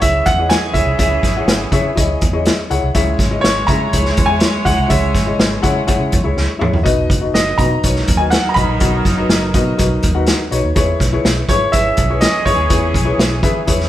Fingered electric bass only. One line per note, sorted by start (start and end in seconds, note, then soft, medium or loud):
0.02 0.19 C#2 medium
0.26 0.53 E2 medium
0.74 0.83 C#2 medium
0.85 0.95 C2 medium
0.99 1.17 C#2 loud
1.23 1.41 G#1 medium
1.46 1.64 G#1 medium
1.72 1.90 C#3 loud
1.97 2.15 C#2 medium
2.22 2.48 E2 medium
2.71 2.80 C#2 medium
2.83 2.91 C2 medium
2.94 3.12 C#2 loud
3.19 3.37 G#1 medium
3.44 3.62 G#1 medium
3.68 3.86 C#3 loud
3.94 4.11 C#2 medium
4.18 4.44 E2 medium
4.66 4.75 C#2 medium
4.78 4.87 C2 medium
4.90 5.16 C#2 loud
5.15 5.32 G#1 medium
5.39 5.57 G#1 medium
5.63 5.81 C#3 medium
5.99 6.09 C#3 medium
6.13 6.21 E2 medium
6.25 6.33 C#2 medium
6.36 6.45 C#2 medium
6.61 6.70 E2 medium
6.73 6.82 D#2 medium
6.85 7.03 B1 loud
7.10 7.28 F#1 loud
7.33 7.52 F#1 medium
7.58 7.76 B2 medium
7.84 8.01 B1 medium
8.08 8.35 D#2 medium
8.56 8.65 B1 medium
8.68 8.77 A#1 medium
8.81 8.99 B1 loud
9.05 9.23 F#1 medium
9.29 9.56 F#1 medium
9.54 9.72 B2 loud
9.79 9.97 B1 medium
10.04 10.30 D#2 medium
10.52 10.60 B1 medium
10.63 10.72 D#2 medium
10.76 10.94 E2 medium
11.00 11.18 B1 medium
11.24 11.42 B1 medium
11.48 11.66 G#2 medium
11.74 11.91 G#1 medium
11.98 12.24 B1 medium
12.45 12.54 G#1 medium
12.57 12.66 D#2 medium
12.71 12.95 E2 medium
12.94 13.12 B1 medium
13.18 13.44 B1 medium
13.42 13.60 E3 medium
13.68 13.89 E2 medium